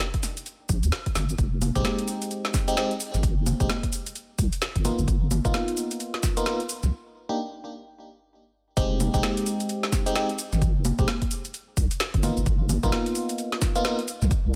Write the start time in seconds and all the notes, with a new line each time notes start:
0.00 snare, shaker
0.14 kick, closed hi-hat
0.23 snare, open hi-hat, shaker
0.37 closed hi-hat, shaker
0.46 closed hi-hat, shaker
0.69 A#1, kick, open hi-hat, shaker
0.83 D#2, closed hi-hat, shaker
0.92 snare, shaker
1.06 kick, closed hi-hat
1.15 G1, snare, open hi-hat, shaker
1.29 closed hi-hat, shaker
1.38 F1, kick, closed hi-hat, shaker
1.62 open hi-hat, high conga, shaker
1.75 F1 G#3 C4 D#4 G4, kick, closed hi-hat, shaker
1.85 snare, high conga, shaker
1.99 closed hi-hat
2.08 open hi-hat, shaker
2.22 closed hi-hat, shaker
2.31 closed hi-hat, shaker
2.45 snare
2.54 kick, snare, open hi-hat, shaker
2.68 G#3 C4 D#4 G4, closed hi-hat, shaker
2.77 G#3 C4 D#4 G4, snare, shaker
2.91 closed hi-hat
3.00 open hi-hat, shaker
3.14 G#1, snare, closed hi-hat, shaker
3.23 kick, closed hi-hat, shaker
3.37 F1
3.46 open hi-hat, high conga, shaker
3.60 F1 G#3 C4 D#4 G4, kick, closed hi-hat, shaker
3.70 snare, high conga, shaker
3.83 kick, closed hi-hat
3.92 open hi-hat, shaker
4.06 closed hi-hat, shaker
4.15 closed hi-hat, shaker
4.39 C2, kick, open hi-hat, shaker
4.53 closed hi-hat, shaker
4.62 snare, shaker
4.76 G1, kick, closed hi-hat
4.85 A#3 B3 D#4 F4, snare, open hi-hat, high conga, shaker
4.99 G1, closed hi-hat, shaker
5.08 G1, kick, closed hi-hat, shaker
5.31 open hi-hat, high conga, shaker
5.45 G1 A#3 B3 D#4 F4, kick, closed hi-hat, shaker
5.54 snare, high conga, shaker
5.68 closed hi-hat
5.77 open hi-hat, shaker
5.91 closed hi-hat, shaker
6.00 closed hi-hat, shaker
6.14 snare
6.23 kick, snare, open hi-hat, shaker
6.37 A#3 B3 D#4 F4, closed hi-hat, shaker
6.46 A#3 B3 D#4 F4, snare, shaker
6.60 closed hi-hat
6.69 open hi-hat, shaker
6.83 C2, snare, closed hi-hat, shaker
7.29 A#3 D4 D#4 G4
8.77 F1 G#3 C4 D#4 G4, kick, closed hi-hat, shaker
9.00 open hi-hat, high conga, shaker
9.14 F1 G#3 C4 D#4 G4, kick, closed hi-hat, shaker
9.23 snare, high conga, shaker
9.37 closed hi-hat
9.46 open hi-hat, shaker
9.60 closed hi-hat, shaker
9.69 closed hi-hat, shaker
9.83 snare
9.92 kick, snare, open hi-hat, shaker
10.06 G#3 C4 D#4 G4, closed hi-hat, shaker
10.15 G#3 C4 D#4 G4, snare, shaker
10.29 closed hi-hat
10.38 open hi-hat, shaker
10.53 G#1, snare, closed hi-hat, shaker
10.62 kick, closed hi-hat, shaker
10.76 F1
10.85 open hi-hat, high conga, shaker
10.99 F1 G#3 C4 D#4 G4, kick, closed hi-hat, shaker
11.08 snare, high conga, shaker
11.22 kick, closed hi-hat
11.31 open hi-hat, shaker
11.45 closed hi-hat, shaker
11.54 closed hi-hat, shaker
11.77 C2, kick, open hi-hat, shaker
11.91 closed hi-hat, shaker
12.00 snare, shaker
12.14 G1, kick, closed hi-hat
12.23 A#3 B3 D#4 F4, snare, open hi-hat, high conga, shaker
12.37 G1, closed hi-hat, shaker
12.46 G1, kick, closed hi-hat, shaker
12.69 open hi-hat, high conga, shaker
12.83 G1 A#3 B3 D#4 F4, kick, closed hi-hat, shaker
12.92 snare, high conga, shaker
13.06 closed hi-hat
13.15 open hi-hat, shaker
13.29 closed hi-hat, shaker
13.38 closed hi-hat, shaker
13.52 snare
13.62 kick, snare, open hi-hat, shaker
13.76 A#3 B3 D#4 F4, closed hi-hat, shaker
13.85 A#3 B3 D#4 F4, snare, shaker
13.99 closed hi-hat
14.08 open hi-hat, shaker
14.22 C2, snare, closed hi-hat, shaker
14.31 kick, closed hi-hat, shaker
14.45 C2